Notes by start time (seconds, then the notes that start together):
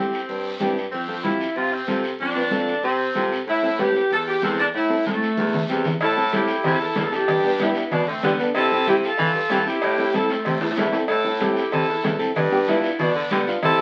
Already playing: C4 E4 G4
0.13 short guiro
0.29 G2, high conga, long guiro
0.59 G2 C4 E4 G4, high conga, short guiro
0.78 short guiro
0.92 F2 C4, high conga, long guiro
1.08 C4 F4 A4
1.23 C4 E4 F4 G4, high conga, short guiro
1.41 short guiro
1.56 C3 F4, high conga, long guiro
1.72 C4
1.87 C3 C4 F4 A4, high conga, short guiro
2.03 short guiro
2.19 F2 D4, high conga, long guiro
2.35 C4 F4 B4
2.51 C4 F4 A4, high conga, short guiro
2.68 short guiro
2.83 C3 C4, high conga, long guiro
3.14 C3 C4 F4 A4, high conga, short guiro
3.32 short guiro
3.47 A2 E4, high conga, long guiro
3.62 C4 E4 A4
3.78 C4 E4 G4 B4, high conga, short guiro
3.95 short guiro
4.11 E2 A4, high conga, long guiro
4.27 G4
4.42 E2 C4 E4 A4, high conga, short guiro
4.58 D4, short guiro
4.74 A2 E4, high conga, long guiro
4.89 C4 E4 A4
5.06 A3 C4 E4 A4, high conga, short guiro
5.22 short guiro
5.37 E2, high conga, long guiro
5.54 low conga
5.69 E2 C4 E4 G4, short guiro
5.84 low conga, short guiro
6.00 A2 E4 A4, cowbell, high conga, long guiro
6.17 C4 E4 A4
6.32 C4 E4 G4 A4, cowbell, high conga, short guiro
6.48 short guiro
6.63 C3 E4 A4, cowbell, high conga, low conga, long guiro
6.81 E2
6.95 E2 C4 E4 A4, cowbell, high conga, low conga, low timbale, short guiro
7.05 A4
7.11 C4 D4 E4 G4 A4, short guiro
7.28 G2, cowbell, high conga, low conga, long guiro
7.44 B3 D4 G4
7.59 B3 D4 E4 G4, cowbell, high conga, short guiro
7.75 short guiro
7.91 B2 B3 D4, cowbell, high conga, low conga, long guiro
8.07 D3 A3 C4
8.23 D3 G3 B3 D4 G4, cowbell, high conga, low conga, short guiro
8.39 B3 D4 A4, short guiro
8.55 C3 E4 A4, cowbell, high conga, long guiro
8.71 C4 E4 G4
8.86 C4 E4 G4, cowbell, high conga, short guiro
9.03 F4 A4, short guiro
9.18 E3, cowbell, high conga, low conga, long guiro
9.34 G2
9.49 E3 C4 E4 G4, cowbell, high conga, low timbale, short guiro
9.65 C4 E4 G4, short guiro
9.82 A2, cowbell, high conga, long guiro
9.98 C4 E4 A4
10.13 C4 E4 A4, cowbell, high conga, short guiro
10.29 A3 C4, short guiro
10.45 C3, cowbell, high conga, low conga, long guiro
10.61 E2, high timbale
10.71 high timbale
10.76 E2 C4 E4 A4, cowbell, high conga, short guiro
10.82 low timbale
10.92 C4 E4 A4, low timbale, short guiro
11.08 A2 E4 A4, cowbell, high conga, long guiro
11.24 C4 E4 A4
11.40 C4 E4 G4 A4, cowbell, high conga, short guiro
11.56 short guiro
11.71 C3 E4 A4, cowbell, high conga, low conga, long guiro
11.88 E2
12.03 E2 C4 E4 A4, cowbell, high conga, low conga, low timbale, short guiro
12.18 C4 E4 A4, short guiro
12.36 G2, cowbell, high conga, low conga, long guiro
12.51 B3 D4 G4
12.67 B3 D4 E4 F4, cowbell, high conga, short guiro
12.83 short guiro
12.99 B2 B3 D4, cowbell, high conga, low conga, long guiro
13.15 D3
13.31 D3 G3 B3 D4 G4, cowbell, high conga, low timbale, short guiro
13.47 B3 D4 F4, short guiro
13.63 C3 E4 A4, cowbell, high conga, low conga, long guiro
13.78 C4